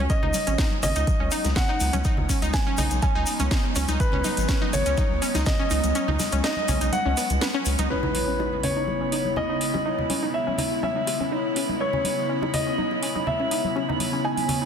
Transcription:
0.10 F#3 G#3 B3 C#4 D#5, kick, closed hi-hat, shaker
0.23 C#2 D#4, low conga
0.34 open hi-hat, high conga, shaker
0.47 G#1 C#4, closed hi-hat, shaker
0.58 D#4, kick, snare, closed hi-hat, shaker
0.71 high conga
0.83 G#1 C#4 D#5, open hi-hat, low conga, shaker
0.96 C#2 D#4, closed hi-hat, shaker
1.07 kick, closed hi-hat, high conga, shaker
1.20 C#2 C#4
1.31 D#4, open hi-hat, shaker
1.44 C#2, snare, closed hi-hat, high conga, shaker
1.55 C#4 F#5, kick, snare, closed hi-hat, low conga, shaker
1.69 D#4
1.80 C#2, open hi-hat, shaker
1.93 C#2 C#4, closed hi-hat, high conga, shaker
2.04 D#4, kick, closed hi-hat, shaker
2.17 C#2, low conga
2.29 C#4, kick, open hi-hat, high conga, shaker
2.42 C#2 D#4, closed hi-hat, shaker
2.53 G#5, kick, snare, closed hi-hat, shaker
2.67 C#4, high conga
2.78 B1 D#4, open hi-hat, low conga, shaker
2.91 B1, closed hi-hat, shaker
3.02 C#4 G#5, kick, closed hi-hat, high conga, shaker
3.15 C#2 D#4
3.26 open hi-hat, shaker
3.39 C#2 C#4, closed hi-hat, high conga, shaker
3.51 D#4, kick, snare, closed hi-hat, shaker
3.76 C#2 C#4, open hi-hat, shaker
3.88 C#2 D#4, closed hi-hat, high conga, shaker
4.00 B4, kick, closed hi-hat, shaker
4.12 C#2 C#4, low conga
4.24 D#4, open hi-hat, high conga, shaker
4.37 G#1, closed hi-hat, shaker
4.48 C#4, kick, snare, closed hi-hat, shaker
4.62 D#4, high conga
4.73 G#1 C#5, open hi-hat, low conga, shaker
4.86 C#2 C#4, closed hi-hat, shaker
4.97 D#4, kick, closed hi-hat, high conga, shaker
5.11 C#2
5.22 C#4, open hi-hat, shaker
5.34 C#2 D#4, snare, closed hi-hat, high conga, shaker
5.46 D#5, kick, snare, closed hi-hat, low conga, shaker
5.59 C#4
5.70 C#2 D#4, open hi-hat, shaker
5.84 C#2, closed hi-hat, high conga, shaker
5.95 C#4, closed hi-hat, shaker
6.08 C#2 D#4, low conga
6.19 snare, open hi-hat, high conga, shaker
6.32 C#2 C#4, closed hi-hat, shaker
6.44 D#4 D#5, snare, closed hi-hat, shaker
6.57 high conga
6.68 B1 C#4, open hi-hat, low conga, shaker
6.81 B1 D#4, closed hi-hat, shaker
6.92 F#5, closed hi-hat, high conga, shaker
7.06 C#2 C#4
7.17 B3, open hi-hat, shaker
7.30 C#2, closed hi-hat, high conga, shaker
7.41 B3, snare, closed hi-hat, shaker
7.54 C#4
7.65 C#2, open hi-hat, shaker
7.78 C#2 D#4, closed hi-hat, high conga, shaker
7.90 C#3 G#3 B3 C#4 E4 B4 C#5 B5, impact
8.03 D#4, high bongo, low conga
8.15 open hi-hat, high conga
8.28 C#4
8.39 D#4, high bongo
8.53 high conga
8.63 C#4 C#5, open hi-hat, low conga
8.76 D#4
8.87 high bongo, high conga
9.01 C#4
9.12 D#4, open hi-hat
9.25 high conga
9.36 C#4 D#5, high bongo, low conga
9.50 D#4
9.61 open hi-hat
9.74 C#4, high bongo, high conga
9.85 D#4
9.99 low conga
10.10 C#4, open hi-hat, high conga
10.22 D#4, high bongo
10.34 E5
10.47 C#4, high conga
10.58 D#4, open hi-hat, low conga
10.71 high bongo
10.83 C#4 E5, high conga
10.96 D#4
11.07 open hi-hat, high bongo
11.20 C#4, high conga
11.32 D#4
11.56 C#4, open hi-hat, high bongo
11.69 D#4, high conga
11.80 B3 E4 C#5
11.93 C#4, low conga
12.04 D#4, open hi-hat, high bongo, high conga
12.29 C#4
12.42 D#4, high bongo, high conga
12.54 D#5, open hi-hat, low conga
12.67 C#4
12.78 D#4, high conga
12.91 high bongo
13.03 C#4, open hi-hat
13.16 D#4, high conga
13.27 E5, low conga
13.40 C#4, high bongo
13.51 D#4, open hi-hat
13.64 high conga
13.76 C#4, high bongo
13.89 D#4, low conga
14.00 open hi-hat, high conga
14.13 C#4
14.24 D#4 G#5, high bongo
14.37 open hi-hat, high conga
14.49 C#4, open hi-hat, low conga
14.62 D#4

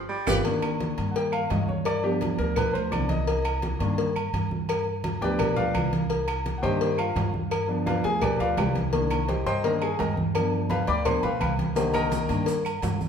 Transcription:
0.09 G3
0.27 G1 F4 G4 B4 D5, cowbell, high conga, high timbale, claves, maracas
0.44 D#3 A#3 D4, cowbell, high conga, low agogo
0.62 cowbell, high conga, low agogo, claves
0.80 cowbell, high conga
0.98 G2, cowbell, low agogo
1.11 F#5
1.16 G5, cowbell, high conga
1.32 F5, high conga, low agogo, claves
1.50 G2 D#5, cowbell, high conga, low timbale, low agogo
1.68 C#5, high conga
1.85 D5, cowbell, high conga, low agogo, claves
2.03 F3 B3 D4 G4, high conga
2.21 cowbell, high conga, low agogo
2.38 D2 A#4, cowbell, high conga
2.56 B4, cowbell, high conga, low conga, low agogo, claves
2.74 D2 C5, high conga, low agogo
2.91 C2 F3 B3 D4 D5, cowbell, high conga, low agogo, claves
3.09 D#5, cowbell, high conga
3.27 cowbell, high conga, low agogo
3.45 cowbell, high conga, low agogo, claves
3.62 cowbell, high conga
3.79 G2 D#3 A#3 D4, cowbell, low agogo
3.98 cowbell, high conga
4.16 high conga, low agogo, claves
4.33 G2, cowbell, high conga, low agogo
4.51 high conga
4.69 cowbell, high conga, low agogo, claves
4.87 high conga
5.04 cowbell, high conga, low agogo
5.21 D2 F3 B3 D4 G4 B4 D5 G5, cowbell, high conga
5.39 cowbell, high conga, low conga, low agogo, claves
5.56 D2 F4 B4 D5 F5, high conga, low conga, low agogo
5.74 C2, cowbell, high conga, low agogo, claves
5.93 cowbell, high conga
6.10 cowbell, high conga, low agogo
6.28 cowbell, high conga, low agogo, claves
6.46 cowbell, high conga
6.58 F#5
6.62 G2 D#3 A#3 D4 G4 C5 D#5 G5, cowbell, low agogo
6.81 cowbell, high conga
6.98 F4 F5, high conga, low agogo, claves
7.16 G2, cowbell, high conga, low timbale, low agogo
7.34 high conga
7.51 cowbell, high conga, low agogo, claves
7.68 F3 B3 D4, high conga
7.86 F4 B4 D5 F5, cowbell, high conga, low agogo
8.04 D2 G#4 G#5, cowbell
8.22 G4 B4 D5 G5, cowbell, high conga, low conga, low agogo, claves
8.40 D2 F4 B4 D5 F5, high conga, low agogo
8.57 C2 G4 B4 D5 G5, cowbell, high conga, low timbale, low agogo, claves
8.75 cowbell, high conga
8.92 D#3 A#3 D4, cowbell, high conga, low agogo
9.10 cowbell, high conga, low agogo, claves
9.28 G4 C5 D#5 G5, cowbell, high conga
9.46 G2 C5 D#5 G5 C6, cowbell, low agogo
9.64 D#3 A#3 D4 A#4 D#5 G5 A#5, cowbell, high conga
9.82 G#4 G#5, high conga, low agogo, claves
9.99 G2 A#4 D#5 G5 A#5, cowbell, high conga, low timbale, low agogo
10.17 high conga
10.35 F3 B3 D4, cowbell, high conga, low agogo, claves
10.53 high conga
10.70 B4 F5 G5 B5, cowbell, high conga, low agogo
10.87 D2 D5 G5 B5 D6, cowbell, high conga
11.05 F3 B3 D4 C5 C6, cowbell, high conga, low conga, low agogo, claves
11.23 D2 B4 F5 G5 B5, high conga, low conga, low agogo
11.40 C2 B4 F5 G5 B5, cowbell, high conga, low agogo, claves
11.59 cowbell, high conga
11.75 D3 D#3 A#3 G4 C5 D#5 G5, cowbell, high conga, low agogo, maracas
11.94 A#4 D#5 G5 A#5, cowbell, high conga, low agogo, claves, maracas
12.12 cowbell, high conga, maracas
12.29 G2 D#3 A#3 D4, cowbell, low agogo, maracas
12.46 cowbell, high conga, maracas
12.65 high conga, low agogo, claves, maracas
12.82 G2, cowbell, high conga, low timbale, low agogo, maracas
13.01 high conga, maracas

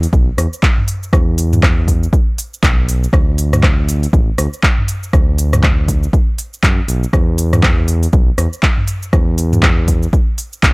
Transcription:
0.03 open hi-hat, shaker
0.13 B1, kick, shaker
0.38 E2, cross-stick, open hi-hat, shaker
0.53 shaker
0.63 kick, clap, shaker
0.78 mid tom
0.88 open hi-hat, shaker
1.03 shaker
1.13 E2, kick, cross-stick, shaker
1.38 open hi-hat, shaker
1.53 mid tom, shaker
1.63 kick, cross-stick, clap, shaker
1.88 kick, open hi-hat, shaker
2.03 shaker
2.13 kick, shaker
2.38 open hi-hat, shaker
2.54 shaker
2.63 B1, kick, clap, open hi-hat, shaker
2.89 open hi-hat, shaker
3.04 shaker
3.13 D2, kick, cross-stick, shaker
3.38 open hi-hat, shaker
3.53 cross-stick, mid tom, shaker
3.63 kick, cross-stick, clap, shaker
3.89 open hi-hat, shaker
4.03 open hi-hat, shaker
4.13 A1, kick, shaker
4.38 D2, cross-stick, open hi-hat, shaker
4.53 shaker
4.63 kick, clap, shaker
4.78 mid tom
4.88 open hi-hat, shaker
5.03 shaker
5.13 D2, kick, cross-stick, shaker
5.38 open hi-hat, shaker
5.53 cross-stick, mid tom, shaker
5.63 kick, cross-stick, clap, shaker
5.88 kick, open hi-hat, shaker
6.03 shaker
6.13 kick, shaker
6.38 open hi-hat, shaker
6.54 shaker
6.63 F#2, kick, clap, open hi-hat, shaker
6.88 B1, open hi-hat, shaker
7.03 shaker
7.13 E2, kick, cross-stick, shaker
7.38 open hi-hat, shaker
7.53 cross-stick, mid tom, shaker
7.63 kick, cross-stick, clap, shaker
7.88 open hi-hat, shaker
8.03 open hi-hat, shaker
8.13 B1, kick, shaker
8.38 E2, cross-stick, open hi-hat, shaker
8.53 shaker
8.63 kick, clap, shaker
8.77 mid tom
8.88 open hi-hat, shaker
9.03 shaker
9.13 E2, kick, cross-stick, shaker
9.38 open hi-hat, shaker
9.53 mid tom, shaker
9.63 kick, cross-stick, clap, shaker
9.88 kick, open hi-hat, shaker
10.03 shaker
10.13 kick, shaker
10.38 open hi-hat, shaker
10.53 shaker
10.63 B1, kick, clap, open hi-hat, shaker

